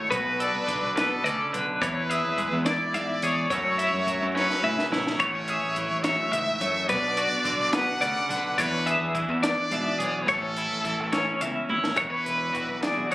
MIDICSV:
0, 0, Header, 1, 6, 480
1, 0, Start_track
1, 0, Tempo, 565504
1, 93, Time_signature, 6, 3, 24, 8
1, 11160, End_track
2, 0, Start_track
2, 0, Title_t, "Clean electric guitar"
2, 0, Program_c, 0, 27
2, 0, Note_on_c, 0, 73, 64
2, 87, Note_off_c, 0, 73, 0
2, 90, Note_on_c, 0, 71, 87
2, 337, Note_off_c, 0, 71, 0
2, 337, Note_on_c, 0, 74, 79
2, 810, Note_off_c, 0, 74, 0
2, 813, Note_on_c, 0, 71, 89
2, 1055, Note_off_c, 0, 71, 0
2, 1055, Note_on_c, 0, 74, 61
2, 1302, Note_off_c, 0, 74, 0
2, 1302, Note_on_c, 0, 71, 71
2, 1542, Note_off_c, 0, 71, 0
2, 1542, Note_on_c, 0, 73, 89
2, 1779, Note_off_c, 0, 73, 0
2, 1779, Note_on_c, 0, 76, 85
2, 2254, Note_off_c, 0, 76, 0
2, 2257, Note_on_c, 0, 74, 92
2, 2498, Note_off_c, 0, 74, 0
2, 2498, Note_on_c, 0, 76, 65
2, 2735, Note_off_c, 0, 76, 0
2, 2745, Note_on_c, 0, 73, 76
2, 2964, Note_off_c, 0, 73, 0
2, 2974, Note_on_c, 0, 73, 87
2, 3207, Note_off_c, 0, 73, 0
2, 3210, Note_on_c, 0, 76, 80
2, 3689, Note_off_c, 0, 76, 0
2, 3692, Note_on_c, 0, 73, 78
2, 3932, Note_off_c, 0, 73, 0
2, 3938, Note_on_c, 0, 76, 74
2, 4168, Note_off_c, 0, 76, 0
2, 4168, Note_on_c, 0, 73, 72
2, 4403, Note_off_c, 0, 73, 0
2, 4413, Note_on_c, 0, 73, 87
2, 4658, Note_off_c, 0, 73, 0
2, 4658, Note_on_c, 0, 76, 81
2, 5129, Note_off_c, 0, 76, 0
2, 5133, Note_on_c, 0, 73, 77
2, 5364, Note_off_c, 0, 73, 0
2, 5364, Note_on_c, 0, 76, 70
2, 5607, Note_off_c, 0, 76, 0
2, 5611, Note_on_c, 0, 73, 74
2, 5848, Note_off_c, 0, 73, 0
2, 5852, Note_on_c, 0, 71, 92
2, 6086, Note_off_c, 0, 71, 0
2, 6090, Note_on_c, 0, 74, 79
2, 6558, Note_off_c, 0, 74, 0
2, 6561, Note_on_c, 0, 71, 89
2, 6796, Note_off_c, 0, 71, 0
2, 6799, Note_on_c, 0, 74, 72
2, 7040, Note_off_c, 0, 74, 0
2, 7040, Note_on_c, 0, 71, 78
2, 7283, Note_off_c, 0, 71, 0
2, 7283, Note_on_c, 0, 73, 93
2, 7521, Note_off_c, 0, 73, 0
2, 7524, Note_on_c, 0, 76, 82
2, 8000, Note_off_c, 0, 76, 0
2, 8003, Note_on_c, 0, 74, 93
2, 8252, Note_off_c, 0, 74, 0
2, 8252, Note_on_c, 0, 76, 65
2, 8482, Note_off_c, 0, 76, 0
2, 8482, Note_on_c, 0, 73, 76
2, 8722, Note_off_c, 0, 73, 0
2, 8732, Note_on_c, 0, 73, 89
2, 8972, Note_off_c, 0, 73, 0
2, 8972, Note_on_c, 0, 76, 85
2, 9440, Note_off_c, 0, 76, 0
2, 9443, Note_on_c, 0, 73, 94
2, 9686, Note_off_c, 0, 73, 0
2, 9686, Note_on_c, 0, 76, 76
2, 9927, Note_off_c, 0, 76, 0
2, 9927, Note_on_c, 0, 73, 71
2, 10154, Note_off_c, 0, 73, 0
2, 10165, Note_on_c, 0, 73, 79
2, 10400, Note_off_c, 0, 73, 0
2, 10404, Note_on_c, 0, 71, 73
2, 10887, Note_off_c, 0, 71, 0
2, 10890, Note_on_c, 0, 74, 78
2, 11131, Note_off_c, 0, 74, 0
2, 11160, End_track
3, 0, Start_track
3, 0, Title_t, "Trumpet"
3, 0, Program_c, 1, 56
3, 0, Note_on_c, 1, 73, 85
3, 102, Note_on_c, 1, 71, 103
3, 115, Note_off_c, 1, 73, 0
3, 824, Note_on_c, 1, 69, 93
3, 837, Note_off_c, 1, 71, 0
3, 1359, Note_off_c, 1, 69, 0
3, 1535, Note_on_c, 1, 71, 96
3, 2252, Note_on_c, 1, 74, 87
3, 2264, Note_off_c, 1, 71, 0
3, 2970, Note_on_c, 1, 73, 105
3, 2983, Note_off_c, 1, 74, 0
3, 3637, Note_off_c, 1, 73, 0
3, 3637, Note_on_c, 1, 73, 70
3, 3690, Note_on_c, 1, 71, 103
3, 3703, Note_off_c, 1, 73, 0
3, 4231, Note_off_c, 1, 71, 0
3, 4401, Note_on_c, 1, 73, 103
3, 5123, Note_on_c, 1, 76, 107
3, 5136, Note_off_c, 1, 73, 0
3, 5845, Note_on_c, 1, 74, 114
3, 5858, Note_off_c, 1, 76, 0
3, 6569, Note_on_c, 1, 78, 119
3, 6582, Note_off_c, 1, 74, 0
3, 7288, Note_off_c, 1, 78, 0
3, 7293, Note_on_c, 1, 71, 110
3, 7749, Note_off_c, 1, 71, 0
3, 8005, Note_on_c, 1, 74, 109
3, 8679, Note_on_c, 1, 71, 76
3, 8692, Note_off_c, 1, 74, 0
3, 8740, Note_on_c, 1, 69, 112
3, 8753, Note_off_c, 1, 71, 0
3, 9694, Note_off_c, 1, 69, 0
3, 10175, Note_on_c, 1, 71, 104
3, 10881, Note_on_c, 1, 68, 82
3, 10894, Note_off_c, 1, 71, 0
3, 11103, Note_on_c, 1, 66, 88
3, 11116, Note_off_c, 1, 68, 0
3, 11160, Note_off_c, 1, 66, 0
3, 11160, End_track
4, 0, Start_track
4, 0, Title_t, "Clean electric guitar"
4, 0, Program_c, 2, 27
4, 0, Note_on_c, 2, 45, 64
4, 84, Note_on_c, 2, 47, 75
4, 91, Note_off_c, 2, 45, 0
4, 91, Note_on_c, 2, 66, 65
4, 340, Note_on_c, 2, 69, 68
4, 568, Note_off_c, 2, 47, 0
4, 568, Note_on_c, 2, 50, 65
4, 824, Note_on_c, 2, 47, 66
4, 1058, Note_off_c, 2, 47, 0
4, 1070, Note_on_c, 2, 49, 65
4, 1291, Note_off_c, 2, 50, 0
4, 1300, Note_on_c, 2, 50, 60
4, 1302, Note_off_c, 2, 49, 0
4, 1503, Note_off_c, 2, 66, 0
4, 1508, Note_off_c, 2, 69, 0
4, 1536, Note_off_c, 2, 50, 0
4, 1541, Note_on_c, 2, 40, 92
4, 1549, Note_on_c, 2, 64, 56
4, 1788, Note_on_c, 2, 68, 66
4, 2022, Note_on_c, 2, 56, 61
4, 2267, Note_off_c, 2, 64, 0
4, 2270, Note_on_c, 2, 64, 65
4, 2498, Note_off_c, 2, 40, 0
4, 2507, Note_on_c, 2, 40, 63
4, 2735, Note_off_c, 2, 68, 0
4, 2745, Note_on_c, 2, 68, 64
4, 2949, Note_off_c, 2, 56, 0
4, 2950, Note_off_c, 2, 68, 0
4, 2976, Note_off_c, 2, 40, 0
4, 2979, Note_on_c, 2, 42, 69
4, 2983, Note_on_c, 2, 54, 59
4, 2987, Note_on_c, 2, 57, 57
4, 2997, Note_off_c, 2, 64, 0
4, 3000, Note_on_c, 2, 61, 59
4, 3004, Note_on_c, 2, 64, 56
4, 3227, Note_off_c, 2, 64, 0
4, 3231, Note_on_c, 2, 64, 61
4, 3447, Note_off_c, 2, 54, 0
4, 3457, Note_on_c, 2, 54, 54
4, 3690, Note_off_c, 2, 61, 0
4, 3693, Note_on_c, 2, 61, 63
4, 3934, Note_on_c, 2, 49, 61
4, 4164, Note_off_c, 2, 64, 0
4, 4175, Note_on_c, 2, 64, 68
4, 4383, Note_off_c, 2, 61, 0
4, 4384, Note_off_c, 2, 49, 0
4, 4385, Note_off_c, 2, 54, 0
4, 4386, Note_off_c, 2, 42, 0
4, 4406, Note_on_c, 2, 59, 61
4, 4409, Note_on_c, 2, 45, 79
4, 4431, Note_off_c, 2, 57, 0
4, 4541, Note_off_c, 2, 59, 0
4, 4541, Note_on_c, 2, 61, 47
4, 4653, Note_off_c, 2, 64, 0
4, 4668, Note_on_c, 2, 68, 61
4, 4903, Note_on_c, 2, 52, 59
4, 5128, Note_on_c, 2, 42, 60
4, 5359, Note_off_c, 2, 42, 0
4, 5362, Note_on_c, 2, 44, 58
4, 5600, Note_off_c, 2, 45, 0
4, 5606, Note_off_c, 2, 44, 0
4, 5610, Note_on_c, 2, 45, 59
4, 5827, Note_off_c, 2, 52, 0
4, 5829, Note_off_c, 2, 68, 0
4, 5841, Note_off_c, 2, 45, 0
4, 5844, Note_on_c, 2, 47, 73
4, 5848, Note_off_c, 2, 61, 0
4, 5851, Note_on_c, 2, 62, 65
4, 6094, Note_on_c, 2, 66, 67
4, 6318, Note_on_c, 2, 50, 65
4, 6326, Note_off_c, 2, 47, 0
4, 6552, Note_on_c, 2, 47, 66
4, 6800, Note_off_c, 2, 47, 0
4, 6806, Note_on_c, 2, 49, 65
4, 7029, Note_off_c, 2, 50, 0
4, 7039, Note_on_c, 2, 50, 67
4, 7047, Note_off_c, 2, 49, 0
4, 7260, Note_off_c, 2, 62, 0
4, 7261, Note_off_c, 2, 66, 0
4, 7282, Note_on_c, 2, 40, 81
4, 7283, Note_off_c, 2, 50, 0
4, 7292, Note_on_c, 2, 62, 67
4, 7522, Note_on_c, 2, 68, 70
4, 7764, Note_on_c, 2, 52, 61
4, 7997, Note_off_c, 2, 62, 0
4, 8008, Note_on_c, 2, 62, 61
4, 8252, Note_on_c, 2, 47, 67
4, 8472, Note_off_c, 2, 68, 0
4, 8475, Note_on_c, 2, 68, 66
4, 8698, Note_off_c, 2, 62, 0
4, 8701, Note_off_c, 2, 47, 0
4, 8714, Note_on_c, 2, 45, 85
4, 8717, Note_on_c, 2, 59, 55
4, 8724, Note_off_c, 2, 40, 0
4, 8740, Note_off_c, 2, 68, 0
4, 8846, Note_off_c, 2, 59, 0
4, 8846, Note_on_c, 2, 61, 54
4, 8977, Note_on_c, 2, 64, 69
4, 9204, Note_off_c, 2, 52, 0
4, 9208, Note_on_c, 2, 52, 64
4, 9444, Note_off_c, 2, 61, 0
4, 9455, Note_on_c, 2, 61, 66
4, 9682, Note_off_c, 2, 45, 0
4, 9684, Note_on_c, 2, 40, 67
4, 9919, Note_off_c, 2, 64, 0
4, 9929, Note_on_c, 2, 64, 73
4, 10140, Note_off_c, 2, 52, 0
4, 10143, Note_off_c, 2, 61, 0
4, 10147, Note_off_c, 2, 40, 0
4, 10155, Note_on_c, 2, 40, 77
4, 10157, Note_on_c, 2, 59, 54
4, 10271, Note_off_c, 2, 59, 0
4, 10271, Note_on_c, 2, 62, 46
4, 10632, Note_on_c, 2, 52, 57
4, 10635, Note_off_c, 2, 64, 0
4, 10639, Note_on_c, 2, 66, 55
4, 11124, Note_on_c, 2, 47, 61
4, 11131, Note_on_c, 2, 56, 58
4, 11160, Note_off_c, 2, 40, 0
4, 11160, Note_off_c, 2, 47, 0
4, 11160, Note_off_c, 2, 52, 0
4, 11160, Note_off_c, 2, 56, 0
4, 11160, Note_off_c, 2, 62, 0
4, 11160, Note_off_c, 2, 66, 0
4, 11160, End_track
5, 0, Start_track
5, 0, Title_t, "Fingered electric bass"
5, 0, Program_c, 3, 33
5, 98, Note_on_c, 3, 35, 88
5, 412, Note_off_c, 3, 35, 0
5, 466, Note_on_c, 3, 35, 81
5, 671, Note_off_c, 3, 35, 0
5, 709, Note_on_c, 3, 35, 86
5, 913, Note_off_c, 3, 35, 0
5, 1055, Note_on_c, 3, 38, 83
5, 1160, Note_off_c, 3, 38, 0
5, 1311, Note_on_c, 3, 35, 77
5, 1514, Note_off_c, 3, 35, 0
5, 1540, Note_on_c, 3, 40, 94
5, 1854, Note_off_c, 3, 40, 0
5, 1910, Note_on_c, 3, 40, 93
5, 2114, Note_off_c, 3, 40, 0
5, 2139, Note_on_c, 3, 40, 100
5, 2347, Note_off_c, 3, 40, 0
5, 2499, Note_on_c, 3, 44, 79
5, 2602, Note_off_c, 3, 44, 0
5, 2740, Note_on_c, 3, 40, 90
5, 2948, Note_off_c, 3, 40, 0
5, 2974, Note_on_c, 3, 42, 103
5, 3290, Note_off_c, 3, 42, 0
5, 3336, Note_on_c, 3, 42, 87
5, 3545, Note_off_c, 3, 42, 0
5, 3581, Note_on_c, 3, 42, 91
5, 3788, Note_off_c, 3, 42, 0
5, 3930, Note_on_c, 3, 45, 78
5, 4037, Note_off_c, 3, 45, 0
5, 4174, Note_on_c, 3, 34, 84
5, 4384, Note_off_c, 3, 34, 0
5, 4413, Note_on_c, 3, 33, 96
5, 4728, Note_off_c, 3, 33, 0
5, 4781, Note_on_c, 3, 33, 74
5, 4988, Note_off_c, 3, 33, 0
5, 5016, Note_on_c, 3, 33, 90
5, 5225, Note_off_c, 3, 33, 0
5, 5369, Note_on_c, 3, 37, 83
5, 5475, Note_off_c, 3, 37, 0
5, 5609, Note_on_c, 3, 42, 82
5, 5820, Note_off_c, 3, 42, 0
5, 5852, Note_on_c, 3, 35, 99
5, 6167, Note_off_c, 3, 35, 0
5, 6206, Note_on_c, 3, 35, 82
5, 6418, Note_off_c, 3, 35, 0
5, 6445, Note_on_c, 3, 35, 92
5, 6658, Note_off_c, 3, 35, 0
5, 6805, Note_on_c, 3, 38, 91
5, 6912, Note_off_c, 3, 38, 0
5, 7045, Note_on_c, 3, 35, 91
5, 7257, Note_off_c, 3, 35, 0
5, 7286, Note_on_c, 3, 40, 110
5, 7603, Note_off_c, 3, 40, 0
5, 7637, Note_on_c, 3, 40, 85
5, 7852, Note_off_c, 3, 40, 0
5, 7882, Note_on_c, 3, 40, 95
5, 8095, Note_off_c, 3, 40, 0
5, 8242, Note_on_c, 3, 44, 90
5, 8349, Note_off_c, 3, 44, 0
5, 8487, Note_on_c, 3, 35, 93
5, 8698, Note_off_c, 3, 35, 0
5, 8730, Note_on_c, 3, 33, 112
5, 9045, Note_off_c, 3, 33, 0
5, 9096, Note_on_c, 3, 33, 82
5, 9303, Note_off_c, 3, 33, 0
5, 9334, Note_on_c, 3, 33, 103
5, 9542, Note_off_c, 3, 33, 0
5, 9691, Note_on_c, 3, 37, 94
5, 9795, Note_off_c, 3, 37, 0
5, 9934, Note_on_c, 3, 32, 86
5, 10143, Note_off_c, 3, 32, 0
5, 10161, Note_on_c, 3, 28, 84
5, 10270, Note_off_c, 3, 28, 0
5, 10409, Note_on_c, 3, 28, 87
5, 10621, Note_off_c, 3, 28, 0
5, 10650, Note_on_c, 3, 28, 80
5, 10756, Note_off_c, 3, 28, 0
5, 10767, Note_on_c, 3, 35, 76
5, 10874, Note_off_c, 3, 35, 0
5, 11010, Note_on_c, 3, 35, 81
5, 11116, Note_off_c, 3, 35, 0
5, 11134, Note_on_c, 3, 40, 81
5, 11160, Note_off_c, 3, 40, 0
5, 11160, End_track
6, 0, Start_track
6, 0, Title_t, "Drums"
6, 100, Note_on_c, 9, 36, 109
6, 103, Note_on_c, 9, 42, 90
6, 185, Note_off_c, 9, 36, 0
6, 187, Note_off_c, 9, 42, 0
6, 342, Note_on_c, 9, 42, 77
6, 427, Note_off_c, 9, 42, 0
6, 580, Note_on_c, 9, 36, 68
6, 581, Note_on_c, 9, 42, 57
6, 665, Note_off_c, 9, 36, 0
6, 666, Note_off_c, 9, 42, 0
6, 826, Note_on_c, 9, 42, 74
6, 830, Note_on_c, 9, 38, 100
6, 911, Note_off_c, 9, 42, 0
6, 914, Note_off_c, 9, 38, 0
6, 1067, Note_on_c, 9, 42, 70
6, 1152, Note_off_c, 9, 42, 0
6, 1308, Note_on_c, 9, 42, 70
6, 1393, Note_off_c, 9, 42, 0
6, 1542, Note_on_c, 9, 36, 110
6, 1552, Note_on_c, 9, 42, 87
6, 1627, Note_off_c, 9, 36, 0
6, 1637, Note_off_c, 9, 42, 0
6, 1788, Note_on_c, 9, 42, 69
6, 1873, Note_off_c, 9, 42, 0
6, 2019, Note_on_c, 9, 36, 67
6, 2022, Note_on_c, 9, 42, 58
6, 2103, Note_off_c, 9, 36, 0
6, 2106, Note_off_c, 9, 42, 0
6, 2257, Note_on_c, 9, 42, 88
6, 2260, Note_on_c, 9, 38, 101
6, 2341, Note_off_c, 9, 42, 0
6, 2345, Note_off_c, 9, 38, 0
6, 2498, Note_on_c, 9, 42, 73
6, 2583, Note_off_c, 9, 42, 0
6, 2736, Note_on_c, 9, 42, 79
6, 2821, Note_off_c, 9, 42, 0
6, 2975, Note_on_c, 9, 36, 115
6, 2979, Note_on_c, 9, 42, 88
6, 3060, Note_off_c, 9, 36, 0
6, 3063, Note_off_c, 9, 42, 0
6, 3218, Note_on_c, 9, 42, 83
6, 3303, Note_off_c, 9, 42, 0
6, 3456, Note_on_c, 9, 36, 65
6, 3461, Note_on_c, 9, 42, 60
6, 3541, Note_off_c, 9, 36, 0
6, 3546, Note_off_c, 9, 42, 0
6, 3703, Note_on_c, 9, 38, 50
6, 3788, Note_off_c, 9, 38, 0
6, 3824, Note_on_c, 9, 38, 55
6, 3908, Note_off_c, 9, 38, 0
6, 4062, Note_on_c, 9, 38, 71
6, 4147, Note_off_c, 9, 38, 0
6, 4180, Note_on_c, 9, 38, 98
6, 4265, Note_off_c, 9, 38, 0
6, 4304, Note_on_c, 9, 38, 86
6, 4389, Note_off_c, 9, 38, 0
6, 4412, Note_on_c, 9, 42, 90
6, 4413, Note_on_c, 9, 36, 108
6, 4497, Note_off_c, 9, 42, 0
6, 4498, Note_off_c, 9, 36, 0
6, 4650, Note_on_c, 9, 42, 69
6, 4735, Note_off_c, 9, 42, 0
6, 4891, Note_on_c, 9, 42, 62
6, 4892, Note_on_c, 9, 36, 67
6, 4975, Note_off_c, 9, 42, 0
6, 4977, Note_off_c, 9, 36, 0
6, 5125, Note_on_c, 9, 42, 86
6, 5129, Note_on_c, 9, 38, 110
6, 5210, Note_off_c, 9, 42, 0
6, 5214, Note_off_c, 9, 38, 0
6, 5373, Note_on_c, 9, 42, 67
6, 5458, Note_off_c, 9, 42, 0
6, 5611, Note_on_c, 9, 42, 73
6, 5696, Note_off_c, 9, 42, 0
6, 5849, Note_on_c, 9, 36, 103
6, 5849, Note_on_c, 9, 42, 87
6, 5934, Note_off_c, 9, 36, 0
6, 5934, Note_off_c, 9, 42, 0
6, 6086, Note_on_c, 9, 42, 77
6, 6170, Note_off_c, 9, 42, 0
6, 6326, Note_on_c, 9, 36, 76
6, 6326, Note_on_c, 9, 42, 66
6, 6411, Note_off_c, 9, 36, 0
6, 6411, Note_off_c, 9, 42, 0
6, 6560, Note_on_c, 9, 42, 83
6, 6563, Note_on_c, 9, 38, 108
6, 6644, Note_off_c, 9, 42, 0
6, 6648, Note_off_c, 9, 38, 0
6, 6805, Note_on_c, 9, 42, 69
6, 6890, Note_off_c, 9, 42, 0
6, 7050, Note_on_c, 9, 42, 76
6, 7135, Note_off_c, 9, 42, 0
6, 7285, Note_on_c, 9, 36, 106
6, 7287, Note_on_c, 9, 42, 106
6, 7370, Note_off_c, 9, 36, 0
6, 7372, Note_off_c, 9, 42, 0
6, 7528, Note_on_c, 9, 42, 76
6, 7613, Note_off_c, 9, 42, 0
6, 7765, Note_on_c, 9, 36, 75
6, 7767, Note_on_c, 9, 42, 68
6, 7850, Note_off_c, 9, 36, 0
6, 7852, Note_off_c, 9, 42, 0
6, 8008, Note_on_c, 9, 42, 95
6, 8011, Note_on_c, 9, 38, 110
6, 8092, Note_off_c, 9, 42, 0
6, 8096, Note_off_c, 9, 38, 0
6, 8246, Note_on_c, 9, 42, 71
6, 8331, Note_off_c, 9, 42, 0
6, 8489, Note_on_c, 9, 42, 76
6, 8574, Note_off_c, 9, 42, 0
6, 8728, Note_on_c, 9, 36, 109
6, 8731, Note_on_c, 9, 42, 82
6, 8812, Note_off_c, 9, 36, 0
6, 8816, Note_off_c, 9, 42, 0
6, 8968, Note_on_c, 9, 42, 77
6, 9053, Note_off_c, 9, 42, 0
6, 9207, Note_on_c, 9, 36, 74
6, 9208, Note_on_c, 9, 42, 63
6, 9292, Note_off_c, 9, 36, 0
6, 9293, Note_off_c, 9, 42, 0
6, 9444, Note_on_c, 9, 42, 81
6, 9447, Note_on_c, 9, 38, 104
6, 9529, Note_off_c, 9, 42, 0
6, 9532, Note_off_c, 9, 38, 0
6, 9685, Note_on_c, 9, 42, 67
6, 9770, Note_off_c, 9, 42, 0
6, 9926, Note_on_c, 9, 48, 62
6, 10011, Note_off_c, 9, 48, 0
6, 10047, Note_on_c, 9, 38, 85
6, 10132, Note_off_c, 9, 38, 0
6, 10155, Note_on_c, 9, 42, 73
6, 10165, Note_on_c, 9, 36, 102
6, 10240, Note_off_c, 9, 42, 0
6, 10250, Note_off_c, 9, 36, 0
6, 10408, Note_on_c, 9, 42, 60
6, 10493, Note_off_c, 9, 42, 0
6, 10650, Note_on_c, 9, 36, 63
6, 10650, Note_on_c, 9, 42, 56
6, 10734, Note_off_c, 9, 36, 0
6, 10735, Note_off_c, 9, 42, 0
6, 10888, Note_on_c, 9, 42, 71
6, 10891, Note_on_c, 9, 38, 98
6, 10972, Note_off_c, 9, 42, 0
6, 10976, Note_off_c, 9, 38, 0
6, 11132, Note_on_c, 9, 42, 59
6, 11160, Note_off_c, 9, 42, 0
6, 11160, End_track
0, 0, End_of_file